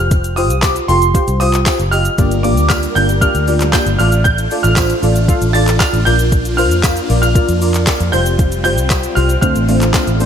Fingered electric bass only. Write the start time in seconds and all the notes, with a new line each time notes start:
Already playing: F1
0.50 C2
0.89 F1
1.28 C2
1.79 F#1
2.18 G1
2.57 D2
2.96 G1
3.35 D2
3.86 G1
3.99 A1
4.64 A1
5.03 A1
5.42 A1
5.93 A1
6.06 A#1
6.71 F2
7.10 A#1
7.49 F2
8.00 F2
8.13 F1
8.78 C2
9.17 C2
9.42 D2
9.55 A1
10.07 A1